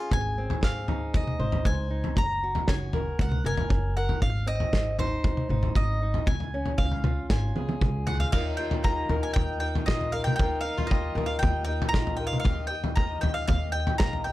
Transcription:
Already playing: G#4 F5
0.00 F4
0.11 G#1 G#5, kick, floor tom
0.38 C4
0.50 floor tom
0.61 G#1 G#3 F5, kick, snare
0.88 D#4, floor tom
1.13 D#2 D#3 D#5, kick, floor tom
1.27 mid tom
1.39 G#1 C5, mid tom
1.52 floor tom
1.65 C#2 G#3 G#5, kick
1.90 D#4
2.04 floor tom
2.16 F#1 F#3 A#5, kick, floor tom
2.43 F#4
2.55 floor tom
2.68 F#1 C#4 G#5, kick, snare
2.93 A#4, floor tom
3.19 C#2 C#3 F#5, kick, floor tom
3.32 mid tom
3.44 F#1 A#4 G#5, mid tom
3.57 floor tom
3.69 F#1 C#4, kick
3.97 A#4 F#5
4.09 floor tom
4.21 G#1 G#2 F5, kick, floor tom
4.47 C4 D#5
4.60 floor tom
4.73 G#1 G#3, kick, snare
4.99 D#4 C5, floor tom
5.24 D#2 D#3, kick, floor tom
5.37 mid tom
5.49 G#1 D#4, mid tom
5.63 floor tom
5.75 G#1 G#3 D#5, kick
6.02 D#4
6.14 floor tom
6.26 C#2 C#3 G#5, kick, floor tom
6.40 floor tom
6.54 C#4
6.66 floor tom
6.78 C#2 G#3 F5, kick
6.92 floor tom
7.04 F4, floor tom, mid tom
7.29 G#1 G#2 G#5, kick, snare
7.55 C#2 G#4, high tom
7.69 high tom
7.81 C#2 G#3, kick, mid tom
8.07 F4 F#5, floor tom
8.20 F5, floor tom
8.32 D#2 D#3 F3 A#3 D#4 F4 G4 A#4 D#5 F5, kick, floor tom, crash
8.57 A#3 D#4 F4 G4 D#5 G5
8.71 floor tom
8.83 D#2 D#3 F3 G3 A#3 D#4 G4 D#5 A#5, kick
9.09 D#2 A#4, floor tom
9.23 G#5
9.34 D#2 A#2 A#3 D#4 G4 D#5 G5, kick, floor tom
9.60 A#3 D#4 G4 D#5 G5
9.75 floor tom
9.86 A#1 D#3 F3 G3 A#3 D#4 F4 G4 D#5, kick, snare
10.01 floor tom
10.12 A#3 D#4 G4 A#4 D#5 F5
10.24 G5, mid tom
10.36 D#3 F3 A#3 D#4 F4 G4 D#5 G5, kick
10.40 D#2 A#4, floor tom
10.61 G4 D#5 F5
10.65 A#3 D#4
10.77 F4, floor tom
10.87 D#3 F3 G3 A#3 D#5
10.91 D#2 D#4 G4 D#5, kick
11.15 D#2 A#4, floor tom
11.26 F5
11.39 D#2 A#2 A#3 D#4 G4 G5, kick
11.43 D#5, floor tom
11.65 D#4 G4 D#5 G5
11.69 A#3 D#4
11.82 floor tom
11.89 D#3 A#5
11.93 A#1 F3 G3 A#3 D#4 F4 G4 D#5, kick, snare
12.07 floor tom
12.17 D#4 G4 A#4 D#5 G5
12.21 A#3
12.27 F5
12.33 mid tom
12.40 F5
12.44 D#2 D#3 F3 A#3 D#4 G4 D#5, kick, floor tom
12.67 G4 D#5 G5
12.72 A#3 D#4
12.84 floor tom
12.96 D#2 D#3 F3 A#3 D#4 G4 D#5 A#5, kick
13.21 D#2 G5, floor tom
13.34 F5
13.47 D#2 A#3 D#4 G4 D#5 F5, kick, floor tom
13.72 D#4 G4 D#5 G5
13.77 A#3
13.87 floor tom
13.98 A#1 D#3 F3 A#3 D#4 G4 D#5 A#5, kick, snare
14.13 floor tom
14.24 A#3 D#4 G4 D#5 G5

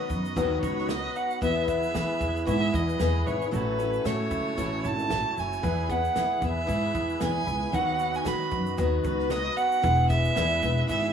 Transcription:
Already playing: D#3 F#3 B3 D#4 F#4 B4 D#5 B5
0.10 F#2 D#4, kick, shaker
0.25 shaker
0.36 D#2 D#3 F#3 B3 D#4 F#4, kick, shaker
0.63 C#2 D#4 C#5, kick, shaker
0.78 snare
0.89 F#3 B3 D#4 F#4 D#5, snare, shaker
1.16 D#4 F#5, shaker
1.30 shaker
1.41 E2 E3 B3 E4 G#4 E5, kick, shaker
1.68 B3 E5, kick, shaker
1.83 shaker
1.94 E3 B3 E4 G#4, snare, shaker
2.21 E2 E4, kick, shaker
2.36 shaker
2.45 G#2 E3 B3 E4 F#4 G#4 E5, kick, shaker
2.61 G#4
2.73 E2 E4 D#5, kick, shaker
2.89 shaker
2.99 E2 E3 B3 E4 G#4, snare, shaker
3.26 G#1 E4 C#5, shaker
3.42 shaker
3.51 A1 A2 E3 F#3 A3 C#4 F#4 A4 B4 C#5 A5, shaker
3.78 F#3 A3 C#4 A4, shaker
3.93 shaker
4.04 A2 F#3 A3 C#4 A4 C#5, snare, shaker
4.31 C#2 E4, kick, shaker
4.57 A1 A2 E3 F#3 A3 C#4 A4, kick, shaker
4.84 G#1 E4 A5, shaker
4.99 shaker
5.09 A1 F#3 A3 C#4 A4, snare, shaker
5.36 F#1 E4 G#5, shaker
5.53 shaker
5.62 E2 E3 B3 E4 G#4 B4 B5, kick, shaker
5.89 B3 E4 G#4 F#5, kick, shaker
6.04 shaker
6.14 E3 B3 E4 G#4, snare, shaker
6.41 E2 B3 E4 G#4 E5, kick, shaker
6.67 G#2 E3 B3 E4 G#4, kick, shaker
6.95 E2 E4, kick, shaker
7.09 shaker
7.20 E2 E3 B3 E4 G#4, snare, shaker
7.24 G#5
7.47 C#2 E4, shaker
7.72 D#2 D#3 F#3 B3 D#4 F#4 D#5 F#5, shaker
7.99 F#3, shaker
8.14 G#5, shaker
8.24 D#3 F#3 B3 C#4 D#4 F#4 B5, snare, shaker
8.40 D#4
8.51 F#2 B3, kick, shaker
8.66 shaker
8.78 D#2 D#3 F#3 B3 D#4 F#4, kick, shaker
9.04 C#2 B3 B4, kick, shaker
9.19 snare
9.30 F#3 B3 D#4 F#4 D#5, snare, shaker
9.57 B3 F#5, shaker
9.72 shaker
9.82 E1 E3 G#3 B3 E4 G#4 E5, kick, shaker
10.09 G#3 E5, kick, shaker
10.24 shaker
10.35 E2 E3 B3 E4 G#4, snare, shaker
10.61 E1 B3 E4 G#4, kick, shaker
10.88 G#1 E3 B3 E4 G#4 E5, kick, shaker

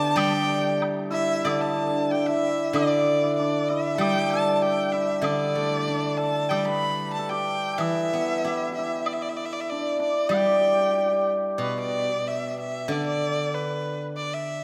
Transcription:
Already playing: D3 D4 E4 G4 A4 B4 A5
0.16 G3 G4 G5, high woodblock
0.82 high woodblock, low woodblock
1.10 E4 E5
1.44 D3 D4 D5, high woodblock
1.61 A4 A5
2.11 G4 G5
2.26 E4 E5
2.73 D3 D4 D5, high woodblock
3.23 E4
3.36 D4 D5
3.69 E4 E5
3.95 G3 A4 G5
4.01 G4, high woodblock
4.30 A4 A5
4.56 A5
4.62 G4 G5
4.92 E4 E5
5.22 D3 D4 D5, high woodblock
5.55 A3
5.88 D4
6.18 A4 A5
6.49 G3 G4 G5, high woodblock
6.65 B4 B5
7.14 A5
7.18 A4
7.29 G4 G5
7.78 E3 E4 E5, high woodblock
8.13 B3
8.44 E4 G4
8.71 G4 E5
8.79 E4
9.06 D5, high woodblock
9.13 E5
9.22 D5
9.29 E5
9.37 D5
9.45 E5
9.53 D5
9.60 E5
9.70 D4 D5
9.99 D4 D5
10.29 G3 G4, high woodblock
10.36 G4 G5
10.46 G4
10.51 G4
10.59 G4
10.67 G4
10.74 G4
10.80 G4
10.91 G4
10.97 G4
11.06 G4
11.11 G4
11.58 B2 B4
11.80 D5
12.28 E5
12.60 E5
12.88 D3 D5
13.07 D5
13.54 B4
14.17 D5
14.34 E5

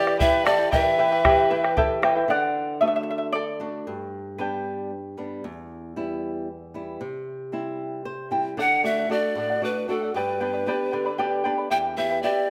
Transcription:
Already playing: E3 G4 D5
0.06 E4 B4 G5, bombo rim
0.19 E4 G4 B4 E5 G5, bombo low
0.45 E4 G4 A4 B4 D5 E5 G5, bombo rim
0.58 E4 B4 G5
0.71 E3 E4 G4 B4 E5 G5, bombo rim, bombo low
0.98 E4 B4 E5 G5, bombo rim
1.12 E4 B4 G5, bombo rim
1.24 E4 G4 B4 E5 G5, bombo rim, bombo low
1.39 bombo rim
1.50 E4 B4 E5 G5, bombo rim
1.64 E4 B4 G5, bombo rim
1.77 E4 G4 A4 B4 E5 G5, bombo low
2.02 E4 B4 E5 G5, bombo rim
2.15 E4 B4 G5, bombo rim
2.28 D3 D5 F#5
2.81 A3 D4 F#4 B4 E5
2.96 E5
3.03 E5
3.10 E5
3.18 E5
3.33 A4 D5
3.60 A3 D4 F#4
3.87 G2
4.38 G3 B3 D4 G4 B4
5.18 G3 B3 D4
5.44 E2
5.96 G3 B3 E4
6.74 G3 B3 E4
7.01 C3
7.52 G3 C4 E4
8.05 C5
8.31 G3 C4 E4 G5
8.57 D3 A4 D5 F#5
8.83 A3 D4 F#4 A4 D5 E5 F#5
8.98 D5 F#5
9.09 A3 D4 F#4 A4 D5 F#5
9.35 A2 A4 D5 F#5
9.50 D5 F#5
9.61 A3 D4 F#4 A4 B4 D5 F#5
9.88 A3 D4 F#4 A4 D5 F#5
10.02 D5 F#5
10.14 G2 G4 B4 D5 G5 B5
10.40 B3 D4 G4 B4 D5 G5 B5
10.54 B4 D5 B5
10.66 B3 D4 G4 B4 D5 G5 B5
10.92 D3 B4 D5 G5 B5
11.06 B4 D5 B5
11.18 B3 D4 G4 B4 D5 G5 B5
11.44 B3 D4 G4 B4 D5 G5 B5
11.58 B4 D5 B5
11.70 E2 E4 G4 B4 E5 G5
11.97 B3 E4 G4 B4 E5 G5
12.11 E4 B4 G5
12.23 B3 E4 G4 B4 D5 E5 G5

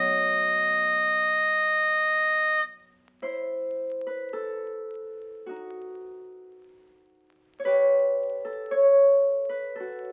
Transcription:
Already playing: B2 F#3 A3 B3 D#4 D#5
3.22 E4 C5
4.07 B4
4.33 A4
5.46 D#4 F#4
7.59 C#5
7.65 G4 B4
8.45 A4
8.71 C#5
9.49 B4
9.75 A4
9.80 F#4

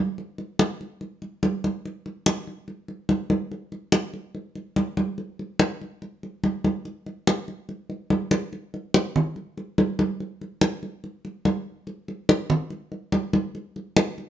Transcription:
0.18 high conga
0.38 high conga
0.59 high conga
0.81 high conga
1.01 high conga
1.22 high conga
1.43 high conga
1.64 high conga
1.85 high conga
2.06 high conga
2.26 high conga
2.47 high conga
2.68 high conga
2.88 high conga
3.09 high conga
3.30 high conga
3.51 high conga
3.72 high conga
3.92 high conga
4.14 high conga
4.35 high conga
4.55 high conga
4.76 high conga
4.97 high conga
5.18 high conga
5.39 high conga
5.59 high conga
5.82 high conga
6.02 high conga
6.23 high conga
6.44 high conga
6.64 high conga
6.85 high conga
7.06 high conga
7.27 high conga
7.48 high conga
7.69 high conga
7.90 high conga
8.10 high conga
8.31 high conga
8.53 high conga
8.74 high conga
8.94 high conga
9.16 high conga, low conga
9.36 high conga
9.57 high conga
9.78 high conga
9.99 high conga
10.20 high conga
10.41 high conga
10.61 high conga
10.83 high conga
11.04 high conga
11.25 high conga
11.45 high conga
11.87 high conga
12.08 high conga
12.29 high conga
12.50 high conga, low conga
12.70 high conga
12.92 high conga
13.12 high conga
13.33 high conga
13.55 high conga
13.76 high conga
13.97 high conga
14.18 high conga

